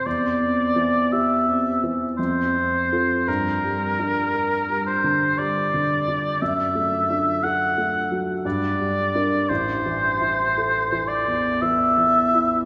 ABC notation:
X:1
M:3/4
L:1/16
Q:1/4=57
K:Gdor
V:1 name="Oboe"
d4 e3 z c4 | B6 c2 d4 | e4 ^f3 z d4 | c6 d2 e4 |]
V:2 name="Grand piano" clef=bass
(3E,,2 C2 E,2 (3G2 C2 E,2 (3F,,2 C2 [FA]2 | (3G,,2 G,2 D2 (3B2 G,2 D,2 (3G,2 D,2 D2 | (3^F,,2 A,2 D2 (3A2 A,2 ^F,2 (3G,,2 G,2 [DB]2 | (3A,,,2 E,2 E2 (3A2 E,2 E,,2 (3E,2 E,,2 E2 |]